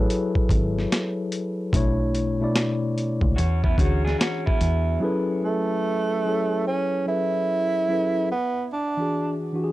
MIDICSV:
0, 0, Header, 1, 6, 480
1, 0, Start_track
1, 0, Key_signature, 3, "minor"
1, 0, Tempo, 821918
1, 1007, Time_signature, 4, 2, 24, 8
1, 5678, End_track
2, 0, Start_track
2, 0, Title_t, "Tine electric piano"
2, 0, Program_c, 0, 4
2, 0, Control_c, 0, 64, 127
2, 0, Note_on_c, 0, 54, 94
2, 0, Note_on_c, 0, 64, 82
2, 0, Note_on_c, 0, 68, 75
2, 0, Note_on_c, 0, 69, 82
2, 0, Note_on_c, 0, 71, 91
2, 0, Note_on_c, 0, 73, 97
2, 0, Note_on_c, 0, 76, 65
2, 727, Note_off_c, 0, 54, 0
2, 730, Note_off_c, 0, 64, 0
2, 733, Note_off_c, 0, 68, 0
2, 736, Note_off_c, 0, 69, 0
2, 739, Note_off_c, 0, 71, 0
2, 1005, Note_on_c, 0, 47, 107
2, 1012, Note_on_c, 0, 57, 108
2, 1016, Control_c, 0, 64, 0
2, 1016, Note_on_c, 0, 62, 105
2, 1017, Note_off_c, 0, 73, 0
2, 1019, Note_off_c, 0, 76, 0
2, 1024, Note_on_c, 0, 64, 100
2, 1030, Note_on_c, 0, 73, 127
2, 1122, Control_c, 0, 64, 127
2, 1318, Note_off_c, 0, 47, 0
2, 1322, Note_off_c, 0, 57, 0
2, 1324, Note_off_c, 0, 62, 0
2, 1328, Note_off_c, 0, 64, 0
2, 1331, Note_off_c, 0, 73, 0
2, 1400, Note_on_c, 0, 47, 84
2, 1407, Note_on_c, 0, 57, 73
2, 1411, Note_on_c, 0, 62, 77
2, 1419, Note_on_c, 0, 64, 86
2, 1425, Note_on_c, 0, 74, 99
2, 1964, Note_off_c, 0, 47, 0
2, 1968, Note_off_c, 0, 57, 0
2, 1970, Note_off_c, 0, 62, 0
2, 1974, Note_off_c, 0, 64, 0
2, 1975, Control_c, 0, 64, 0
2, 1977, Note_off_c, 0, 74, 0
2, 2091, Control_c, 0, 64, 127
2, 2204, Note_on_c, 0, 52, 74
2, 2213, Note_on_c, 0, 62, 67
2, 2220, Note_on_c, 0, 66, 75
2, 2229, Note_on_c, 0, 68, 83
2, 2830, Note_off_c, 0, 52, 0
2, 2835, Note_off_c, 0, 62, 0
2, 2838, Note_off_c, 0, 66, 0
2, 2843, Note_off_c, 0, 68, 0
2, 2920, Note_on_c, 0, 54, 113
2, 2924, Note_on_c, 0, 61, 94
2, 2930, Note_on_c, 0, 64, 102
2, 2935, Note_on_c, 0, 68, 90
2, 2936, Control_c, 0, 64, 0
2, 2940, Note_on_c, 0, 69, 89
2, 2945, Note_on_c, 0, 71, 104
2, 3041, Control_c, 0, 64, 127
2, 3548, Note_off_c, 0, 54, 0
2, 3550, Note_off_c, 0, 61, 0
2, 3553, Note_off_c, 0, 64, 0
2, 3556, Note_off_c, 0, 68, 0
2, 3558, Note_off_c, 0, 69, 0
2, 3561, Note_off_c, 0, 71, 0
2, 3648, Note_on_c, 0, 54, 60
2, 3654, Note_on_c, 0, 61, 58
2, 3658, Note_on_c, 0, 64, 57
2, 3662, Note_on_c, 0, 68, 64
2, 3668, Note_on_c, 0, 69, 52
2, 3673, Note_on_c, 0, 73, 71
2, 4069, Note_off_c, 0, 54, 0
2, 4071, Note_off_c, 0, 61, 0
2, 4073, Note_off_c, 0, 64, 0
2, 4076, Note_off_c, 0, 68, 0
2, 4078, Note_off_c, 0, 69, 0
2, 4081, Note_off_c, 0, 73, 0
2, 4123, Note_on_c, 0, 54, 58
2, 4127, Note_on_c, 0, 61, 57
2, 4132, Note_on_c, 0, 64, 54
2, 4136, Note_on_c, 0, 68, 56
2, 4141, Note_on_c, 0, 69, 52
2, 4146, Note_on_c, 0, 71, 64
2, 4546, Note_off_c, 0, 54, 0
2, 4548, Note_off_c, 0, 61, 0
2, 4551, Note_off_c, 0, 64, 0
2, 4552, Note_off_c, 0, 68, 0
2, 4555, Note_off_c, 0, 69, 0
2, 4558, Note_off_c, 0, 71, 0
2, 4606, Note_on_c, 0, 54, 60
2, 4611, Note_on_c, 0, 61, 57
2, 4615, Note_on_c, 0, 64, 64
2, 4620, Note_on_c, 0, 68, 51
2, 4625, Note_on_c, 0, 69, 56
2, 4631, Note_on_c, 0, 71, 64
2, 4847, Note_off_c, 0, 54, 0
2, 4849, Note_off_c, 0, 61, 0
2, 4851, Note_off_c, 0, 64, 0
2, 4854, Note_off_c, 0, 68, 0
2, 4854, Control_c, 0, 64, 0
2, 4856, Note_off_c, 0, 69, 0
2, 4859, Note_off_c, 0, 71, 0
2, 4972, Control_c, 0, 64, 127
2, 5239, Note_on_c, 0, 52, 64
2, 5247, Note_on_c, 0, 62, 63
2, 5256, Note_on_c, 0, 66, 55
2, 5264, Note_on_c, 0, 68, 74
2, 5520, Note_off_c, 0, 52, 0
2, 5524, Note_off_c, 0, 62, 0
2, 5528, Note_off_c, 0, 66, 0
2, 5532, Note_off_c, 0, 68, 0
2, 5564, Note_on_c, 0, 52, 77
2, 5572, Note_on_c, 0, 62, 69
2, 5582, Note_on_c, 0, 66, 80
2, 5590, Note_on_c, 0, 67, 65
2, 5628, Note_on_c, 0, 68, 83
2, 5629, Note_off_c, 0, 67, 0
2, 5678, Note_off_c, 0, 52, 0
2, 5678, Note_off_c, 0, 62, 0
2, 5678, Note_off_c, 0, 66, 0
2, 5678, Note_off_c, 0, 68, 0
2, 5678, End_track
3, 0, Start_track
3, 0, Title_t, "Clean electric guitar"
3, 0, Program_c, 1, 27
3, 1962, Note_on_c, 1, 66, 74
3, 1966, Note_on_c, 1, 61, 59
3, 2115, Note_off_c, 1, 66, 0
3, 2117, Note_off_c, 1, 61, 0
3, 2124, Note_on_c, 1, 64, 68
3, 2127, Note_on_c, 1, 59, 66
3, 2202, Note_off_c, 1, 64, 0
3, 2204, Note_off_c, 1, 59, 0
3, 2209, Note_on_c, 1, 61, 77
3, 2210, Note_on_c, 1, 66, 72
3, 2358, Note_off_c, 1, 66, 0
3, 2359, Note_off_c, 1, 61, 0
3, 2363, Note_on_c, 1, 68, 85
3, 2366, Note_on_c, 1, 62, 73
3, 2442, Note_off_c, 1, 68, 0
3, 2443, Note_off_c, 1, 62, 0
3, 2445, Note_on_c, 1, 61, 59
3, 2446, Note_on_c, 1, 66, 63
3, 2596, Note_off_c, 1, 66, 0
3, 2597, Note_off_c, 1, 61, 0
3, 2605, Note_on_c, 1, 64, 85
3, 2610, Note_on_c, 1, 59, 68
3, 2911, Note_off_c, 1, 64, 0
3, 2914, Note_off_c, 1, 59, 0
3, 5678, End_track
4, 0, Start_track
4, 0, Title_t, "Tenor saxophone"
4, 0, Program_c, 2, 66
4, 3177, Note_on_c, 2, 57, 84
4, 3869, Note_off_c, 2, 57, 0
4, 3896, Note_on_c, 2, 61, 81
4, 4108, Note_off_c, 2, 61, 0
4, 4134, Note_on_c, 2, 64, 87
4, 4827, Note_off_c, 2, 64, 0
4, 4854, Note_on_c, 2, 59, 90
4, 5067, Note_off_c, 2, 59, 0
4, 5098, Note_on_c, 2, 62, 72
4, 5467, Note_off_c, 2, 62, 0
4, 5678, End_track
5, 0, Start_track
5, 0, Title_t, "Fingered electric bass"
5, 0, Program_c, 3, 33
5, 292, Note_on_c, 3, 32, 97
5, 501, Note_off_c, 3, 32, 0
5, 1014, Note_on_c, 3, 35, 104
5, 1432, Note_off_c, 3, 35, 0
5, 1881, Note_on_c, 3, 37, 79
5, 1955, Note_off_c, 3, 37, 0
5, 1975, Note_on_c, 3, 40, 93
5, 2182, Note_off_c, 3, 40, 0
5, 2212, Note_on_c, 3, 38, 88
5, 2421, Note_off_c, 3, 38, 0
5, 2693, Note_on_c, 3, 40, 86
5, 2901, Note_off_c, 3, 40, 0
5, 5678, End_track
6, 0, Start_track
6, 0, Title_t, "Drums"
6, 59, Note_on_c, 9, 42, 78
6, 117, Note_off_c, 9, 42, 0
6, 206, Note_on_c, 9, 36, 92
6, 265, Note_off_c, 9, 36, 0
6, 288, Note_on_c, 9, 36, 99
6, 295, Note_on_c, 9, 42, 67
6, 346, Note_off_c, 9, 36, 0
6, 353, Note_off_c, 9, 42, 0
6, 459, Note_on_c, 9, 38, 35
6, 517, Note_off_c, 9, 38, 0
6, 539, Note_on_c, 9, 38, 105
6, 539, Note_on_c, 9, 42, 88
6, 597, Note_off_c, 9, 42, 0
6, 598, Note_off_c, 9, 38, 0
6, 771, Note_on_c, 9, 42, 88
6, 829, Note_off_c, 9, 42, 0
6, 1009, Note_on_c, 9, 36, 122
6, 1016, Note_on_c, 9, 42, 89
6, 1068, Note_off_c, 9, 36, 0
6, 1074, Note_off_c, 9, 42, 0
6, 1253, Note_on_c, 9, 42, 62
6, 1311, Note_off_c, 9, 42, 0
6, 1493, Note_on_c, 9, 38, 109
6, 1495, Note_on_c, 9, 42, 80
6, 1551, Note_off_c, 9, 38, 0
6, 1554, Note_off_c, 9, 42, 0
6, 1738, Note_on_c, 9, 42, 69
6, 1797, Note_off_c, 9, 42, 0
6, 1877, Note_on_c, 9, 36, 95
6, 1935, Note_off_c, 9, 36, 0
6, 1975, Note_on_c, 9, 42, 80
6, 2034, Note_off_c, 9, 42, 0
6, 2125, Note_on_c, 9, 36, 84
6, 2183, Note_off_c, 9, 36, 0
6, 2207, Note_on_c, 9, 36, 84
6, 2214, Note_on_c, 9, 42, 68
6, 2265, Note_off_c, 9, 36, 0
6, 2273, Note_off_c, 9, 42, 0
6, 2379, Note_on_c, 9, 38, 35
6, 2438, Note_off_c, 9, 38, 0
6, 2457, Note_on_c, 9, 42, 84
6, 2458, Note_on_c, 9, 38, 106
6, 2516, Note_off_c, 9, 42, 0
6, 2517, Note_off_c, 9, 38, 0
6, 2612, Note_on_c, 9, 36, 92
6, 2670, Note_off_c, 9, 36, 0
6, 2691, Note_on_c, 9, 42, 75
6, 2749, Note_off_c, 9, 42, 0
6, 5678, End_track
0, 0, End_of_file